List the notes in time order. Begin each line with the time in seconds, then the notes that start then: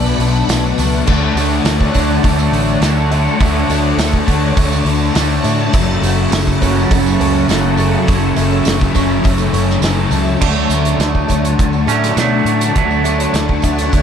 Already playing: B1 B2 F#3 A3 B3 D4 B4 F#5 B5
0.06 tambourine
0.18 B1 B3 D4, open hi-hat
0.22 F#3
0.36 tambourine
0.48 B1 B2 F#3 A3 B3, snare, open hi-hat, tambourine
0.78 C#2 F#3 A3 B3, open hi-hat, tambourine
0.93 tambourine
1.06 D2 D3 F#3 A3 C#5 A5, kick, tambourine, crash
1.10 D4
1.35 D2 A3 D4, open hi-hat, tambourine
1.39 A3
1.64 D2 D3 A3 D4, snare, open hi-hat, tambourine
1.81 kick
1.94 D2 D3 A3 D4, kick, open hi-hat, tambourine
2.23 D2 D3 A3 D4, kick, open hi-hat
2.39 tambourine
2.52 A1 A3 D4, open hi-hat
2.69 tambourine
2.81 D2 D3 A3 D4, snare, open hi-hat, tambourine
2.97 tambourine
3.12 A3 D4, open hi-hat
3.27 tambourine
3.40 D2 D3 A3 D4, kick, open hi-hat, tambourine
3.69 D2 A3 D4, open hi-hat, tambourine
3.97 D2 D3 A3 D4, snare, open hi-hat, tambourine
4.13 kick
4.27 D2 D3 A3 D4, kick, open hi-hat, tambourine
4.57 D2 D3 A3 D4, kick, open hi-hat
4.72 tambourine
4.85 D2 A3 D4, open hi-hat
5.01 tambourine
5.15 D2 D3 A3 D4, snare, open hi-hat, tambourine
5.31 tambourine
5.43 A2 A3 D4, open hi-hat, tambourine
5.60 tambourine
5.71 F#1 F#2 C#3 F#3 A3 C#4 A4 F#5, kick, open hi-hat, tambourine
6.02 F#1 C#3 F#3 A3, open hi-hat, tambourine
6.32 F#1 F#2 C#3 F#3 A3, snare, open hi-hat, tambourine
6.47 kick
6.61 F#1 F#2 C#3 F#3 C#4, kick, open hi-hat, tambourine
6.90 F#1 F#2 C#3 F#3 A3, kick, open hi-hat
7.06 tambourine
7.19 C#2 C#3 F#3 C#4, open hi-hat
7.35 tambourine
7.48 F#1 F#2 C#3 F#3 A3, snare, open hi-hat, tambourine
7.63 tambourine
7.77 C#3 F#3 A3, open hi-hat, tambourine
7.93 tambourine
8.06 F#1 F#2 C#3 F#3 A3 E5, kick, open hi-hat
8.35 F#1 C#3 F#3 A3, open hi-hat, tambourine
8.51 tambourine
8.65 F#1 F#2 C#3 F#3 A3, snare, open hi-hat, tambourine
8.80 kick, tambourine
8.94 F#1 F#2 C#3 F#3 C#4, kick, open hi-hat, tambourine
9.10 tambourine
9.24 F#1 F#2 C#3 F#3 A3, kick, open hi-hat, tambourine
9.38 tambourine
9.53 F#1 F#3 C#4, open hi-hat
9.57 C#3
9.70 snare
9.81 F#1 F#2 C#3 A3, snare, open hi-hat, tambourine
9.86 F#3
10.10 C#2 F#3 A3, open hi-hat, tambourine
10.15 C#3
10.26 tambourine
10.41 D2 D3 F#3 A3 D4 C#5 F#5 A5, kick, crash
10.45 D4
10.69 D2 A3 D4, closed hi-hat, tambourine
10.75 A3
10.85 closed hi-hat
10.99 D2 D3 A3 D4, snare, closed hi-hat, tambourine
11.15 kick, tambourine
11.28 D2 A3 D4, kick, closed hi-hat, tambourine
11.45 closed hi-hat
11.59 D2, kick, closed hi-hat
11.73 tambourine
11.87 A2 F#3 A3 C#4 D4, closed hi-hat, tambourine
11.92 D3
12.04 snare, closed hi-hat
12.16 B2 D3 F#3 A3 D4, snare, closed hi-hat, tambourine
12.45 A2, closed hi-hat
12.61 closed hi-hat, tambourine
12.74 D2 D3 F#3 A3 D4, kick, closed hi-hat
12.90 tambourine
13.04 A3 D4, closed hi-hat, tambourine
13.20 closed hi-hat
13.34 D2 D3 A3 D4, snare, closed hi-hat, tambourine
13.48 kick, tambourine
13.62 D2 A3 D4, kick, closed hi-hat, tambourine
13.79 closed hi-hat
13.93 D2, kick, closed hi-hat